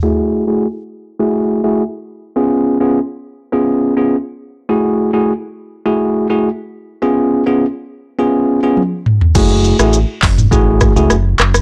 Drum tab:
CC |----------------|----------------|----------------|----------------|
HH |----------------|----------------|----------------|----------------|
SH |----------------|----------------|----------------|----------------|
CP |----------------|----------------|----------------|----------------|
SD |----------------|----------------|----------------|----------------|
T1 |----------------|----------------|----------------|------------o---|
T2 |----------------|----------------|----------------|--------------o-|
FT |----------------|----------------|----------------|---------------o|
BD |----------------|----------------|----------------|----------------|

CC |x---------------|
HH |------o---------|
SH |x-xxx-xxx-xxx-xx|
CP |------x-------x-|
SD |---r------r-r-rr|
T1 |----------------|
T2 |-------o--o-----|
FT |----------------|
BD |o-----o-o-o-----|